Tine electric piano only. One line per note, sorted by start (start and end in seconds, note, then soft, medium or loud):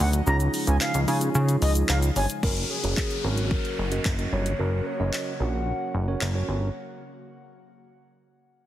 0.27 0.92 C#4 medium
0.27 0.92 D#4 medium
0.27 0.92 F4 medium
0.27 0.92 G#4 medium
0.27 0.92 C#5 medium
1.08 1.19 C#4 medium
1.08 1.19 D#4 medium
1.08 1.19 F4 medium
1.08 1.19 G#4 medium
1.08 1.19 C#5 medium
1.21 2.08 C#4 medium
1.21 2.08 D#4 medium
1.21 2.08 F4 medium
1.21 2.08 G#4 medium
1.21 2.08 C#5 medium
2.43 2.75 C#4 medium
2.43 2.75 F#4 medium
2.43 2.75 A#4 medium
2.43 2.76 C#5 medium
2.83 3.16 C#4 medium
2.83 3.16 F#4 medium
2.83 3.16 A#4 medium
2.83 3.16 C#5 medium
3.24 3.78 C#4 medium
3.24 3.78 F#4 medium
3.24 3.78 A#4 medium
3.24 3.78 C#5 medium
3.91 4.13 C#4 medium
3.91 4.13 F#4 medium
3.91 4.13 A#4 medium
3.91 4.13 D#5 medium
4.18 4.51 C#4 medium
4.18 4.51 F#4 medium
4.18 4.51 A#4 medium
4.18 4.51 D#5 medium
4.59 4.91 C#4 medium
4.59 4.92 F#4 medium
4.59 4.92 A#4 medium
4.59 4.92 C#5 medium
4.99 5.32 C#4 medium
4.99 5.32 F#4 medium
4.99 5.32 A#4 medium
4.99 5.32 D#5 medium
5.40 5.94 C#4 medium
5.40 5.94 F#4 medium
5.40 5.94 A#4 medium
5.40 5.94 C#5 medium
6.08 6.29 C#4 medium
6.08 6.29 F#4 medium
6.08 6.29 A#4 medium
6.08 6.30 C#5 medium
6.35 6.67 C#4 medium
6.35 6.67 F#4 medium
6.35 6.67 A#4 medium
6.35 6.67 C#5 medium